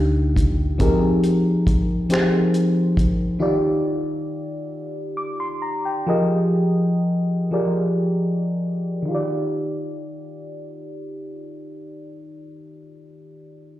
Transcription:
Already playing: fingered electric bass D2, fm electric piano D#3 A#3 D4 D#4 F4 G4
0.36 kick, closed hi-hat
0.78 fm electric piano F3 C4 D#4 G4 G#4 A#4, kick, closed hi-hat
1.24 closed hi-hat
1.67 kick, closed hi-hat
2.09 fm electric piano F3 C4 D#4 G4 G#4 C5, closed hi-hat
2.14 finger snap
2.54 closed hi-hat
2.97 kick, closed hi-hat
3.39 fm electric piano D#3 D#4 F4 G4 D5
5.17 fm electric piano D6
5.40 fm electric piano C6
5.62 fm electric piano A#5
5.85 fm electric piano G5
6.07 fm electric piano F3 F4 G4 G#4 A#4 D#5
7.51 fm electric piano F3 F4 G4 G#4 A#4 D5
9.02 fm electric piano D#3 D#4
9.09 fm electric piano F4 G4
9.15 fm electric piano D5

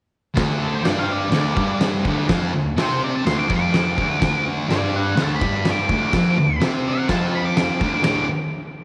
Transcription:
0.35 distorted electric guitar D2 D3, kick, snare, crash
0.59 lead electric guitar A4
0.74 lead electric guitar C5
0.84 distorted electric guitar G2 G3, lead electric guitar D5, snare, crash
0.99 lead electric guitar F5
1.12 lead electric guitar D5
1.31 distorted electric guitar D2 D3, snare, crash
1.36 lead electric guitar D5
1.56 distorted electric guitar G2 G3, kick
1.81 snare, crash
2.05 distorted electric guitar D2 D3, kick
2.29 distorted electric guitar F2 F3, kick, snare, crash
2.54 distorted electric guitar D2
2.77 distorted electric guitar C3 C4, snare, crash
2.82 lead electric guitar C5
3.04 lead electric guitar D5
3.15 lead electric guitar A5
3.25 distorted electric guitar D2 D3, lead electric guitar C6, snare, crash
3.39 lead electric guitar D6
3.48 distorted electric guitar F2 F3, kick
3.56 lead electric guitar D6
3.74 snare, crash
3.97 distorted electric guitar D2 D3, kick
4.20 distorted electric guitar D2 D3, kick, snare, crash
4.68 distorted electric guitar G2 G3, lead electric guitar D5, snare, crash
4.96 lead electric guitar F#5
5.16 distorted electric guitar D2 D3, snare, crash
5.23 lead electric guitar A5
5.36 lead electric guitar B5
5.41 distorted electric guitar G2 G3, kick
5.65 snare, crash
5.71 lead electric guitar D6
5.89 distorted electric guitar D2 D3, kick
6.12 distorted electric guitar F2 F3, kick, snare, crash
6.38 distorted electric guitar D2
6.61 distorted electric guitar C3 C4, snare, crash
6.88 lead electric guitar E5
6.98 lead electric guitar F#5
7.09 distorted electric guitar F2 F3, lead electric guitar A5, kick, snare, crash
7.35 lead electric guitar B5
7.45 lead electric guitar D6
7.57 lead electric guitar D6, snare, crash
7.81 distorted electric guitar D2 D3, kick
8.04 distorted electric guitar D2 A2 D3, lead electric guitar D6, snare, ride bell

